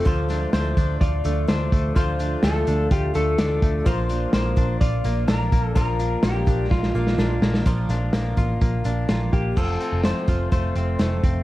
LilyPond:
<<
  \new Staff \with { instrumentName = "Clean electric guitar" } { \time 4/4 \key bes \lydian \tempo 4 = 126 c''4 c''4 d''4 c''4 | c''4 a'4 g'8 a'4. | c''4 c''4 d''4 bes'4 | bes'4 g'4 f'4. r8 |
r2. r8 g'8 | a'4 c''4 c''2 | }
  \new Staff \with { instrumentName = "Synth keys" } { \time 4/4 \key bes \lydian <d' f' a'>1 | <d' f' a'>1 | <d' f' bes'>1 | <d' f' bes'>1 |
r1 | r1 | }
  \new Staff \with { instrumentName = "Twelve-string acoustic guitar" } { \time 4/4 \key bes \lydian <d a d' f'>8 <a d' f'>8 <d a d' f'>8 <a d' f'>4 <a d' f'>8 <d a d' f'>4 | <d a d' f'>8 <a d' f'>8 <d a d' f'>8 <a d' f'>4 <a d' f'>8 <d a d' f'>4 | <bes, f bes d' f'>8 <bes d' f'>8 <f bes d' f'>8 <bes d' f'>4 <bes d' f'>8 <f bes d' f'>4 | <bes, f bes d' f'>8 <bes d' f'>8 <f bes d' f'>8 <bes d' f'>4 <bes d' f'>8 <f bes d' f'>4 |
<bes, f bes d' f'>8 <bes d' f'>8 <f bes d' f'>8 <bes d' f'>4 <bes d' f'>8 <f bes d' f'>4 | <f a c' f'>4 <f a c' f'>8 <a c' f'>8 <f a c' f'>8 <a c' f'>8 <f a c' f'>4 | }
  \new Staff \with { instrumentName = "Clean electric guitar" } { \time 4/4 \key bes \lydian <f f'>8 d'8 a8 d'8 f'8 a8 d'8 a8 | <f f'>8 d'8 a8 d'8 f'8 a8 d'8 a8 | <f f'>8 d'8 bes8 d'8 f'8 bes8 d'8 bes8 | <f f'>8 d'8 bes8 d'8 f'8 bes8 d'8 bes8 |
<f f'>8 d'8 bes8 f'8 bes8 d'8 f'8 bes8 | <f f'>8 c'8 a8 f'8 a8 c'8 a8 c'8 | }
  \new Staff \with { instrumentName = "Picked electric bass" } { \clef bass \time 4/4 \key bes \lydian d,4 d,8 d,8 d,8 d,8 d,8 d,8 | d,4 d,8 d,8 d,8 d,8 d,8 d,8 | bes,,4 bes,,8 bes,,8 bes,,8 bes,,8 bes,,8 bes,,8 | bes,,4 bes,,8 bes,,8 bes,,8 bes,,8 bes,,8 bes,,8 |
bes,,8 bes,,8 bes,,8 a,,8 bes,,8 bes,,8 bes,,8 bes,,8 | f,,8 r16 f,,8 r16 f,,8 f,,8 f,,8 f,,8 f,,8 | }
  \new DrumStaff \with { instrumentName = "Drums" } \drummode { \time 4/4 <hh bd>8 <hh sn>8 <hh sn>8 <hh bd>8 <hh bd>8 hh8 <hh sn>8 <hh bd>8 | <hh bd>8 hh8 <hh sn>8 hh8 <hh bd>8 hh8 <hh sn>8 <hh bd>8 | <hh bd>8 hh8 <hh sn>8 <hh bd>8 <hh bd>8 hh8 <hh sn>8 <hh bd>8 | <hh bd>8 hh8 <hh sn>8 <hh bd>8 <bd sn>16 sn8 sn16 sn8 sn16 sn16 |
<hh bd>8 <hh sn>8 <hh sn>8 <hh bd>8 <hh bd>8 hh8 <hh sn>8 <hh bd>8 | <cymc bd>8 hh8 <hh sn>8 <hh bd>8 <hh bd>8 hh8 <hh sn>8 <hh bd>8 | }
>>